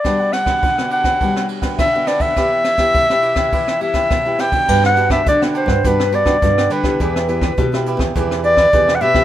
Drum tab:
CC |----------------|----------------|x---------------|----------------|
RD |x-xxx-xxx-xxx-xx|x-xxx-xxx-xxx-xx|----------------|----------------|
HH |----------------|----------------|-xxxxxxxxxx-xxxx|xxxxx-xxx-x-xxx-|
SD |r-rr-r-r-r-rr-r-|r-rr-r-r-r-rr-r-|-r-r-r-r-r-r-r-r|-r-r-r-r-r-r-r-r|
BD |o--oo--oo--oo--o|o--oo--oo--oo--o|o--oo--oo--oo--o|o--oo--oo--oo--o|